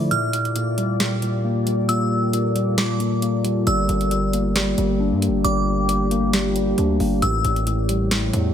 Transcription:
Already playing: tine electric piano D3 F3 A3, ambient pad F4 D5
0.11 tine electric piano A#2, ambient pad A#3 G4, synth bell F6, closed hi-hat
0.33 closed hi-hat
0.45 closed hi-hat
0.56 tine electric piano A#2, closed hi-hat
0.78 tine electric piano G3, closed hi-hat
1.00 tine electric piano A#2, snare, closed hi-hat
1.22 tine electric piano A#2, closed hi-hat
1.45 tine electric piano A#3
1.67 tine electric piano G3, closed hi-hat
1.89 tine electric piano A#2, ambient pad A4, synth bell E6, closed hi-hat
2.33 tine electric piano A#2, closed hi-hat
2.56 tine electric piano G3, closed hi-hat
2.78 tine electric piano A#2, synth bell D6, snare, closed hi-hat
3.00 tine electric piano A#2, closed hi-hat
3.22 tine electric piano A#3, closed hi-hat
3.45 tine electric piano G3, closed hi-hat
3.67 808-style bass G1, tine electric piano G3, ambient pad G4, synth bell E6, closed hi-hat
3.89 808-style bass G1, closed hi-hat
4.01 closed hi-hat
4.11 tine electric piano G3, closed hi-hat
4.33 tine electric piano A#3, closed hi-hat
4.56 tine electric piano G3, snare, closed hi-hat
4.78 808-style bass G1, tine electric piano G3, closed hi-hat
5.00 tine electric piano D4
5.12 808-style bass G2
5.22 tine electric piano A#3, closed hi-hat
5.28 808-style bass G1
5.44 808-style bass G1, tine electric piano G3, synth bell D6, closed hi-hat
5.89 tine electric piano G3, closed hi-hat
6.11 tine electric piano A#3, closed hi-hat
6.33 tine electric piano G3, snare, closed hi-hat
6.56 tine electric piano G3, closed hi-hat
6.78 808-style bass D2, tine electric piano D4, closed hi-hat
7.00 808-style bass G1, tine electric piano A#3, open hi-hat
7.22 808-style bass A1, tine electric piano A2, ambient pad A3 E4 G4 C#5, synth bell E6, closed hi-hat
7.45 808-style bass A1, closed hi-hat
7.56 closed hi-hat
7.67 tine electric piano A2, closed hi-hat
7.89 tine electric piano G3, closed hi-hat
8.11 tine electric piano A2, snare, closed hi-hat
8.33 808-style bass E2, tine electric piano A2, closed hi-hat

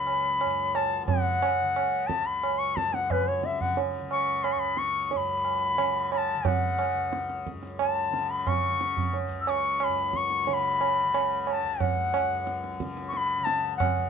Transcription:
Already playing: tanpura C#2 F#2 C#3, bansuri B5
0.07 tabla na
0.41 tanpura F#2, tabla na
0.75 bansuri A5, tabla na
1.02 tanpura C#3
1.07 bansuri F#5, tabla tin, tabla ge
1.42 tabla na
1.61 tanpura C#3
1.76 tabla na
2.07 bansuri A5, tabla ke
2.20 tanpura C#2
2.26 bansuri B5
2.43 tabla na
2.59 bansuri C#6
2.76 tanpura F#2, bansuri A5, tabla ke
2.94 bansuri F#5, tabla te
3.10 bansuri B4, tabla na, tabla ge
3.28 bansuri C#5
3.39 tanpura C#3
3.43 bansuri E5, tabla te
3.61 bansuri F#5, tabla ge
3.77 tabla tin
3.98 tanpura C#3
4.11 bansuri C#6, tabla na
4.44 bansuri B5, tabla na
4.53 tanpura C#2, bansuri C#6
4.59 bansuri B5
4.77 bansuri C#6, tabla te
5.07 bansuri C#6
5.11 tanpura F#2, bansuri C#6, tabla tin
5.17 bansuri B5
5.45 tabla na
5.75 tanpura C#3, tabla na
6.12 bansuri B5, tabla na
6.18 bansuri A5
6.34 tanpura C#3
6.45 bansuri F#5, tabla tin, tabla ge
6.79 tabla na
6.93 tanpura C#2
7.13 tabla te
7.30 tabla te
7.47 tabla ke
7.51 tanpura F#2
7.63 tabla te
7.79 bansuri A5, tabla na
8.11 tanpura C#3, tabla te
8.30 bansuri B5
8.47 bansuri C#6, tabla na, tabla ge
8.69 tanpura C#3
8.81 tabla te
8.97 tabla ge
9.14 tabla tin
9.28 tanpura C#2
9.41 bansuri E6
9.47 bansuri C#6, tabla na
9.80 bansuri B5, tabla na
9.87 tanpura F#2
10.13 bansuri C#6, tabla ke
10.30 tabla te
10.45 tanpura C#3, tabla tin
10.50 bansuri B5 C#6
10.81 tabla na
11.03 tanpura C#3
11.14 tabla na
11.42 bansuri B5
11.47 bansuri B5, tabla na
11.52 bansuri A5
11.62 tanpura C#2
11.80 bansuri F#5, tabla tin, tabla ge
12.14 tabla na
12.21 tanpura F#2
12.47 tabla te
12.64 tabla te
12.80 tanpura C#3, tabla ke
12.97 tabla te
13.08 bansuri C#6
13.13 bansuri B5 C#6, tabla te
13.37 tanpura C#3
13.44 bansuri A5, tabla te
13.77 bansuri F#5, tabla na, tabla ge
13.96 tanpura C#2

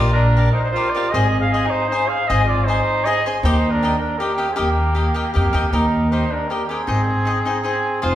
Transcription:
Already playing: upright bass A#1, trumpet F4 D5
0.13 trumpet D4 A#4
0.37 cavaquinho G4 A#4 D5 F5
0.52 trumpet D#4 C5
0.59 trumpet D#4 A#4 C5
0.71 trumpet F4 C5
0.76 cavaquinho G4 A#4 D5 F5
0.90 trumpet F4 D5
0.95 cavaquinho G4 A#4 D5 F5
1.11 upright bass G#1, trumpet G#4 D#5, cavaquinho G#4 C5
1.15 cavaquinho D#5 G#5
1.41 trumpet G#4 F5
1.49 trumpet G#4 D#5
1.54 cavaquinho G#4 C5 D#5 G#5
1.66 trumpet D#4
1.70 trumpet C5
1.88 trumpet D#4 C5
1.92 cavaquinho G#4 C5 D#5 G#5
2.08 trumpet G#4 F5
2.26 upright bass G#1, trumpet G#4 D#5, cavaquinho G#4
2.30 cavaquinho C5 D#5 G#5
2.45 trumpet F4 D5
2.65 trumpet D#4 C5, cavaquinho G#4 C5
2.69 cavaquinho D#5 G#5
3.05 cavaquinho G#4 C5 D#5 G#5, trumpet G#4 D#5
3.26 cavaquinho G#4 C5 D#5 G#5
3.43 upright bass D#2, trumpet D#4 C5, cavaquinho G4 A#4 D#5 G5
3.70 trumpet D4 A#4
3.83 cavaquinho G4 A#4 D#5 G5
3.99 trumpet D4 A#4
4.18 trumpet A#3 G4, cavaquinho G4 A#4 D#5 G5
4.38 cavaquinho G4 A#4 D#5 G5
4.49 trumpet C4 G#4
4.56 upright bass D#2, trumpet A#3 G4, cavaquinho G4 A#4 D#5 G5
4.95 cavaquinho G4 A#4 D#5 G5
5.14 cavaquinho G4 A#4 D#5 G5
5.33 upright bass F2, trumpet A#3 G4, cavaquinho G4 A#4 D#5 G5
5.53 upright bass D#2, cavaquinho G4 A#4 D#5 G5
5.71 upright bass D#2, trumpet D#4 A#4, cavaquinho G4 A#4 D#5 G5
6.10 trumpet D#4 C5, cavaquinho G4 A#4 D#5 G5
6.30 trumpet D4 A#4
6.48 trumpet A#3 G4, cavaquinho G4 A#4 D#5 G5
6.67 trumpet C4 G#4, cavaquinho G4 A#4 D#5
6.71 cavaquinho G5
6.87 upright bass G#1, cavaquinho D#4 G#4 C5 D#5
7.25 cavaquinho D#4 G#4 C5 D#5
7.45 cavaquinho D#4 G#4 C5 D#5
7.63 trumpet C4 G#4, cavaquinho D#4 G#4 C5 D#5
8.02 upright bass F1, cavaquinho F4 G#4 C5 F5, trumpet F4 C5

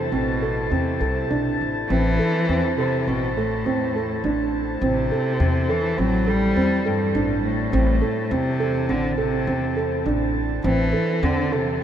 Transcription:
Already playing: cello C3, woodwind section E4 C5 A5
0.12 upright bass A1, cello B2, felt piano C4
0.42 felt piano A4
0.71 upright bass E2, cello C3, felt piano C4
1.01 upright bass C2, felt piano A4
1.30 upright bass B1, felt piano D4
1.61 upright bass A1
1.89 upright bass A1, cello E3, felt piano C4
2.19 felt piano A4
2.49 upright bass E2, felt piano C4
2.78 cello C3, felt piano A4
3.07 upright bass A1, cello B2, felt piano C4
3.36 cello A2, felt piano A4
3.66 upright bass E2, felt piano C4
3.96 felt piano A4
4.24 upright bass A1, felt piano D4
4.82 upright bass A1, cello C3, felt piano C4
5.12 felt piano A4
5.40 upright bass E2, felt piano C4
5.69 cello E3, felt piano A4
5.98 upright bass A1, cello F#3, felt piano C4
6.27 cello G3, felt piano A4
6.56 upright bass E2, felt piano C4
6.86 cello G2, felt piano A4
7.15 upright bass A1, felt piano D4
7.45 cello A2
7.73 upright bass A1, felt piano C4
8.02 felt piano A4
8.31 upright bass E2, cello C3, felt piano C4
8.60 felt piano A4
8.89 upright bass A1, cello D3, felt piano C4
9.18 cello C3, felt piano A4
9.47 upright bass E2, felt piano C4
9.77 felt piano A4
10.06 upright bass A1, felt piano D4
10.64 upright bass A1, cello E3, felt piano C4
10.93 felt piano A4
11.23 upright bass E2, cello D3, felt piano C4
11.52 cello C3, felt piano A4
11.74 cello C3

